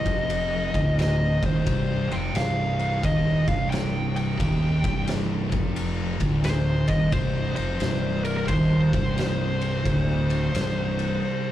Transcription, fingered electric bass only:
0, 0, Header, 1, 2, 480
1, 0, Start_track
1, 0, Key_signature, -3, "minor"
1, 0, Tempo, 681818
1, 1173, Time_signature, 4, 2, 24, 8
1, 8109, End_track
2, 0, Start_track
2, 0, Title_t, "Fingered electric bass"
2, 0, Program_c, 0, 33
2, 43, Note_on_c, 0, 29, 93
2, 495, Note_off_c, 0, 29, 0
2, 522, Note_on_c, 0, 26, 96
2, 975, Note_off_c, 0, 26, 0
2, 1004, Note_on_c, 0, 27, 95
2, 1162, Note_off_c, 0, 27, 0
2, 1175, Note_on_c, 0, 24, 86
2, 1464, Note_off_c, 0, 24, 0
2, 1483, Note_on_c, 0, 29, 95
2, 1641, Note_off_c, 0, 29, 0
2, 1653, Note_on_c, 0, 24, 93
2, 2106, Note_off_c, 0, 24, 0
2, 2135, Note_on_c, 0, 27, 95
2, 2425, Note_off_c, 0, 27, 0
2, 2452, Note_on_c, 0, 24, 98
2, 3071, Note_off_c, 0, 24, 0
2, 3101, Note_on_c, 0, 27, 86
2, 3388, Note_off_c, 0, 27, 0
2, 3409, Note_on_c, 0, 24, 91
2, 3860, Note_off_c, 0, 24, 0
2, 3887, Note_on_c, 0, 29, 93
2, 4339, Note_off_c, 0, 29, 0
2, 4369, Note_on_c, 0, 26, 94
2, 4820, Note_off_c, 0, 26, 0
2, 4848, Note_on_c, 0, 27, 91
2, 5005, Note_off_c, 0, 27, 0
2, 5018, Note_on_c, 0, 24, 101
2, 5306, Note_off_c, 0, 24, 0
2, 5332, Note_on_c, 0, 29, 97
2, 5487, Note_off_c, 0, 29, 0
2, 5497, Note_on_c, 0, 24, 99
2, 5948, Note_off_c, 0, 24, 0
2, 5975, Note_on_c, 0, 27, 96
2, 6264, Note_off_c, 0, 27, 0
2, 6292, Note_on_c, 0, 24, 97
2, 6909, Note_off_c, 0, 24, 0
2, 6940, Note_on_c, 0, 26, 93
2, 7388, Note_off_c, 0, 26, 0
2, 7416, Note_on_c, 0, 24, 99
2, 7866, Note_off_c, 0, 24, 0
2, 8109, End_track
0, 0, End_of_file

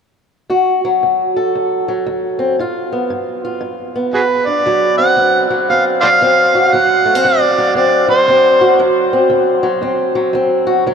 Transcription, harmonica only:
0, 0, Header, 1, 2, 480
1, 0, Start_track
1, 0, Tempo, 519481
1, 445, Time_signature, 4, 2, 24, 8
1, 10109, End_track
2, 0, Start_track
2, 0, Title_t, "Harmonica"
2, 0, Program_c, 0, 22
2, 3821, Note_on_c, 0, 66, 46
2, 3821, Note_on_c, 0, 68, 46
2, 3821, Note_on_c, 0, 71, 66
2, 3878, Note_off_c, 0, 68, 0
2, 3904, Note_off_c, 0, 66, 0
2, 4126, Note_on_c, 0, 74, 72
2, 4140, Note_off_c, 0, 71, 0
2, 4592, Note_off_c, 0, 74, 0
2, 4597, Note_on_c, 0, 78, 91
2, 5044, Note_off_c, 0, 78, 0
2, 5265, Note_on_c, 0, 77, 80
2, 5399, Note_off_c, 0, 77, 0
2, 5551, Note_on_c, 0, 72, 77
2, 5551, Note_on_c, 0, 74, 77
2, 5551, Note_on_c, 0, 77, 111
2, 5611, Note_off_c, 0, 72, 0
2, 5627, Note_off_c, 0, 74, 0
2, 6166, Note_off_c, 0, 77, 0
2, 6166, Note_on_c, 0, 77, 69
2, 6218, Note_on_c, 0, 78, 98
2, 6232, Note_off_c, 0, 77, 0
2, 6699, Note_on_c, 0, 74, 88
2, 6713, Note_off_c, 0, 78, 0
2, 7165, Note_off_c, 0, 74, 0
2, 7171, Note_on_c, 0, 74, 82
2, 7451, Note_off_c, 0, 74, 0
2, 7482, Note_on_c, 0, 72, 85
2, 8096, Note_off_c, 0, 72, 0
2, 10109, End_track
0, 0, End_of_file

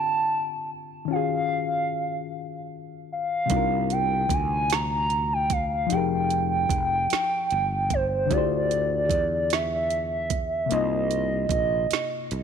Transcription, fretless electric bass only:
0, 0, Header, 1, 3, 480
1, 0, Start_track
1, 0, Key_signature, -3, "minor"
1, 0, Tempo, 800000
1, 660, Time_signature, 6, 3, 24, 8
1, 7459, End_track
2, 0, Start_track
2, 0, Title_t, "Fretless electric bass"
2, 0, Program_c, 0, 35
2, 2105, Note_on_c, 0, 36, 120
2, 2558, Note_off_c, 0, 36, 0
2, 2581, Note_on_c, 0, 38, 97
2, 3516, Note_off_c, 0, 38, 0
2, 3554, Note_on_c, 0, 29, 111
2, 4003, Note_off_c, 0, 29, 0
2, 4022, Note_on_c, 0, 29, 83
2, 4237, Note_off_c, 0, 29, 0
2, 4513, Note_on_c, 0, 31, 87
2, 4962, Note_off_c, 0, 31, 0
2, 4989, Note_on_c, 0, 38, 118
2, 5461, Note_off_c, 0, 38, 0
2, 5461, Note_on_c, 0, 40, 99
2, 6396, Note_off_c, 0, 40, 0
2, 6432, Note_on_c, 0, 36, 120
2, 6882, Note_off_c, 0, 36, 0
2, 6901, Note_on_c, 0, 34, 90
2, 7116, Note_off_c, 0, 34, 0
2, 7390, Note_on_c, 0, 36, 95
2, 7459, Note_off_c, 0, 36, 0
2, 7459, End_track
3, 0, Start_track
3, 0, Title_t, "Muted fretless electric bass strokes"
3, 4275, Note_on_c, 9, 29, 50
3, 4335, Note_off_c, 9, 29, 0
3, 7152, Note_on_c, 9, 29, 50
3, 7212, Note_off_c, 9, 29, 0
3, 7459, End_track
0, 0, End_of_file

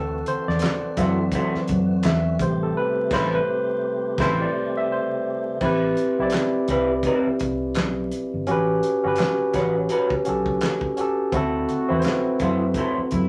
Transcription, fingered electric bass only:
0, 0, Header, 1, 3, 480
1, 0, Start_track
1, 0, Tempo, 714286
1, 1850, Time_signature, 4, 2, 24, 8
1, 8930, End_track
2, 0, Start_track
2, 0, Title_t, "Fingered electric bass"
2, 0, Program_c, 0, 33
2, 0, Note_on_c, 0, 38, 91
2, 148, Note_off_c, 0, 38, 0
2, 322, Note_on_c, 0, 40, 80
2, 406, Note_off_c, 0, 40, 0
2, 657, Note_on_c, 0, 42, 80
2, 867, Note_off_c, 0, 42, 0
2, 1143, Note_on_c, 0, 42, 89
2, 1351, Note_off_c, 0, 42, 0
2, 1379, Note_on_c, 0, 40, 91
2, 1589, Note_off_c, 0, 40, 0
2, 1614, Note_on_c, 0, 33, 97
2, 1826, Note_off_c, 0, 33, 0
2, 2096, Note_on_c, 0, 33, 97
2, 2264, Note_off_c, 0, 33, 0
2, 2814, Note_on_c, 0, 33, 103
2, 2982, Note_off_c, 0, 33, 0
2, 3778, Note_on_c, 0, 33, 83
2, 3988, Note_off_c, 0, 33, 0
2, 4161, Note_on_c, 0, 35, 64
2, 4245, Note_off_c, 0, 35, 0
2, 4495, Note_on_c, 0, 36, 83
2, 4707, Note_off_c, 0, 36, 0
2, 4984, Note_on_c, 0, 36, 86
2, 5192, Note_off_c, 0, 36, 0
2, 5225, Note_on_c, 0, 35, 92
2, 5432, Note_off_c, 0, 35, 0
2, 5602, Note_on_c, 0, 31, 81
2, 5686, Note_off_c, 0, 31, 0
2, 5700, Note_on_c, 0, 33, 92
2, 5909, Note_off_c, 0, 33, 0
2, 6080, Note_on_c, 0, 31, 77
2, 6165, Note_off_c, 0, 31, 0
2, 6417, Note_on_c, 0, 33, 78
2, 6628, Note_off_c, 0, 33, 0
2, 6904, Note_on_c, 0, 35, 84
2, 7111, Note_off_c, 0, 35, 0
2, 7613, Note_on_c, 0, 38, 102
2, 7826, Note_off_c, 0, 38, 0
2, 7998, Note_on_c, 0, 40, 78
2, 8083, Note_off_c, 0, 40, 0
2, 8338, Note_on_c, 0, 42, 79
2, 8548, Note_off_c, 0, 42, 0
2, 8823, Note_on_c, 0, 42, 95
2, 8930, Note_off_c, 0, 42, 0
2, 8930, End_track
3, 0, Start_track
3, 0, Title_t, "Muted fingered electric bass strokes"
3, 1040, Note_on_c, 9, 29, 42
3, 1107, Note_off_c, 9, 29, 0
3, 4884, Note_on_c, 9, 29, 41
3, 4951, Note_off_c, 9, 29, 0
3, 6794, Note_on_c, 9, 29, 39
3, 6861, Note_off_c, 9, 29, 0
3, 8721, Note_on_c, 9, 29, 46
3, 8788, Note_off_c, 9, 29, 0
3, 8930, End_track
0, 0, End_of_file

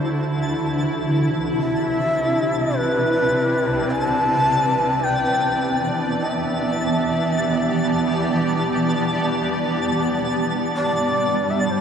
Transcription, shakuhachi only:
0, 0, Header, 1, 2, 480
1, 0, Start_track
1, 0, Tempo, 500000
1, 11336, End_track
2, 0, Start_track
2, 0, Title_t, "Shakuhachi"
2, 0, Program_c, 0, 77
2, 1543, Note_on_c, 0, 76, 100
2, 2654, Note_on_c, 0, 71, 108
2, 2668, Note_off_c, 0, 76, 0
2, 3750, Note_on_c, 0, 81, 106
2, 3765, Note_off_c, 0, 71, 0
2, 4838, Note_on_c, 0, 79, 97
2, 4852, Note_off_c, 0, 81, 0
2, 5681, Note_off_c, 0, 79, 0
2, 5952, Note_on_c, 0, 76, 93
2, 8098, Note_off_c, 0, 76, 0
2, 10331, Note_on_c, 0, 74, 102
2, 11043, Note_on_c, 0, 76, 79
2, 11057, Note_off_c, 0, 74, 0
2, 11146, Note_on_c, 0, 74, 76
2, 11160, Note_off_c, 0, 76, 0
2, 11241, Note_on_c, 0, 72, 71
2, 11256, Note_off_c, 0, 74, 0
2, 11302, Note_on_c, 0, 74, 72
2, 11316, Note_off_c, 0, 72, 0
2, 11336, Note_off_c, 0, 74, 0
2, 11336, End_track
0, 0, End_of_file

